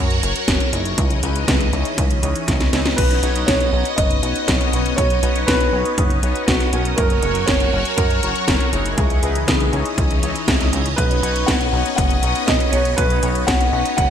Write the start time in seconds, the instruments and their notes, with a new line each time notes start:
Already playing: analog synth bass F#2, string machine F#3 F#4 A#4 C#5, analog polysynth C#4 F#4 A#4 C#5
0.11 closed hi-hat
0.23 analog synth bass F#1, analog polysynth C#4 F#4 A#4 C#5, closed hi-hat
0.36 closed hi-hat
0.48 analog synth bass F#1, kick, snare, closed hi-hat
0.60 closed hi-hat
0.73 analog synth bass F#1, analog polysynth D#4 E4 G#4 C#5, closed hi-hat
0.85 closed hi-hat
0.98 analog synth bass C#2, string machine E3 C#4 D#5, kick, closed hi-hat
1.10 analog polysynth D#4 E4 G#4 C#5, closed hi-hat
1.23 analog synth bass C#2, analog polysynth D#4 E4 G#4 B4, closed hi-hat
1.36 closed hi-hat
1.48 analog synth bass C#2, kick, snare, closed hi-hat
1.61 closed hi-hat
1.73 analog synth bass C#2, analog polysynth D#4 E4 G#4 C#5, closed hi-hat
1.85 closed hi-hat
1.98 analog synth bass C#2, kick, closed hi-hat
2.11 closed hi-hat
2.23 analog synth bass C#2, analog polysynth D#4 E4 G#4 C#5, closed hi-hat
2.36 closed hi-hat
2.48 analog synth bass C#2, kick, snare, closed hi-hat
2.60 snare, closed hi-hat
2.73 analog synth bass C#2, analog polysynth D#4 E4 G#4 C#5, snare, closed hi-hat
2.86 snare, closed hi-hat
2.96 analog synth bass B1, string machine B3 C#4, grand piano B4, kick, closed hi-hat, crash
3.10 analog polysynth D#4 F#4 B4 C#5, closed hi-hat
3.23 analog synth bass B1, analog polysynth D#4 F#4 B4 C#5, closed hi-hat
3.36 closed hi-hat
3.47 analog synth bass B1, grand piano C#5, kick, snare, closed hi-hat
3.60 closed hi-hat
3.73 analog synth bass B1, analog polysynth D#4 F#4 B4 C#5
3.85 closed hi-hat
3.96 analog synth bass F#1, grand piano D#5, kick, closed hi-hat
4.11 closed hi-hat
4.23 analog synth bass B1, analog polysynth D#4 F#4 B4 C#5, closed hi-hat
4.36 closed hi-hat
4.48 analog synth bass B1, kick, snare, closed hi-hat
4.61 closed hi-hat
4.73 analog synth bass B1, analog polysynth D#4 F#4 B4 C#5, closed hi-hat
4.86 closed hi-hat
4.96 analog synth bass B1, grand piano C#5, kick, closed hi-hat
5.10 analog polysynth D#4 F#4 B4 C#5, closed hi-hat
5.23 analog synth bass B1, analog polysynth D#4 F#4 B4 C#5, closed hi-hat
5.36 closed hi-hat
5.47 analog synth bass B1, grand piano B4, kick, snare, closed hi-hat
5.61 closed hi-hat
5.73 analog synth bass B1, analog polysynth D#4 F#4 B4 C#5
5.85 closed hi-hat
5.98 analog synth bass F#1, kick, closed hi-hat
6.10 closed hi-hat
6.23 analog synth bass B1, analog polysynth D#4 F#4 B4 C#5, closed hi-hat
6.36 closed hi-hat
6.46 analog synth bass B1, grand piano F#4, kick, snare, closed hi-hat
6.60 snare, closed hi-hat
6.73 analog synth bass B1, analog polysynth C#4 F#4 A#4 C#5, closed hi-hat
6.85 closed hi-hat
6.96 analog synth bass F#1, string machine F#3 F#4 A#4 C#5, grand piano A#4, kick, closed hi-hat
7.10 analog polysynth C#4 F#4 A#4 C#5, closed hi-hat
7.23 analog synth bass F#1, analog polysynth C#4 F#4 A#4 C#5, closed hi-hat
7.35 closed hi-hat
7.46 analog synth bass F#1, grand piano C#5, kick, snare, closed hi-hat
7.60 closed hi-hat
7.73 analog synth bass F#1, analog polysynth C#4 F#4 A#4 C#5
7.85 closed hi-hat
7.96 analog synth bass F#2, grand piano A#4, kick, closed hi-hat
8.10 closed hi-hat
8.23 analog synth bass F#1, analog polysynth C#4 F#4 A#4 C#5, closed hi-hat
8.36 closed hi-hat
8.48 analog synth bass F#1, kick, snare, closed hi-hat
8.60 closed hi-hat
8.73 analog synth bass F#1, analog polysynth D#4 E4 G#4 C#5, closed hi-hat
8.86 closed hi-hat
8.96 analog synth bass C#2, string machine E3 C#4 D#5, grand piano G#4, kick, closed hi-hat
9.10 analog polysynth D#4 E4 G#4 C#5, closed hi-hat
9.23 analog synth bass C#2, analog polysynth D#4 E4 G#4 B4, closed hi-hat
9.35 closed hi-hat
9.46 analog synth bass C#2, grand piano G#4, kick, snare, closed hi-hat
9.60 closed hi-hat
9.73 analog synth bass C#2, analog polysynth D#4 E4 G#4 C#5, closed hi-hat
9.86 closed hi-hat
9.98 analog synth bass C#2, kick, closed hi-hat
10.11 closed hi-hat
10.23 analog synth bass C#2, analog polysynth D#4 E4 G#4 C#5, closed hi-hat
10.36 closed hi-hat
10.48 analog synth bass C#2, kick, snare, closed hi-hat
10.61 snare, closed hi-hat
10.73 analog synth bass C#2, analog polysynth D#4 E4 G#4 C#5, closed hi-hat
10.86 closed hi-hat
10.96 analog synth bass B1, string machine B3, grand piano B4, kick, closed hi-hat
11.10 analog polysynth D#4 F#4 B4 C#5, closed hi-hat
11.23 analog synth bass B1, analog polysynth D#4 F#4 B4 C#5, closed hi-hat
11.36 closed hi-hat
11.46 analog synth bass B1, grand piano F#5, kick, snare, closed hi-hat
11.61 closed hi-hat
11.73 analog synth bass B1, analog polysynth D#4 F#4 B4 C#5
11.86 closed hi-hat
11.96 analog synth bass F#1, grand piano F#5, kick, closed hi-hat
12.10 closed hi-hat
12.23 analog synth bass B1, analog polysynth D#4 F#4 B4 C#5, closed hi-hat
12.35 closed hi-hat
12.46 analog synth bass B1, grand piano D#5, kick, snare, closed hi-hat
12.60 closed hi-hat
12.71 analog synth bass B1, analog polysynth D#4 F#4 B4 C#5, grand piano C#5, closed hi-hat
12.85 closed hi-hat
12.97 analog synth bass B1, grand piano B4, kick, closed hi-hat
13.10 analog polysynth D#4 F#4 B4 C#5, closed hi-hat
13.23 analog synth bass B1, analog polysynth D#4 F#4 B4 C#5, closed hi-hat
13.35 closed hi-hat
13.47 analog synth bass B1, grand piano F#5, kick, snare, closed hi-hat
13.61 closed hi-hat
13.73 analog synth bass B1, analog polysynth D#4 F#4 B4 C#5
13.86 closed hi-hat
13.97 analog synth bass F#1, grand piano F#5, kick, closed hi-hat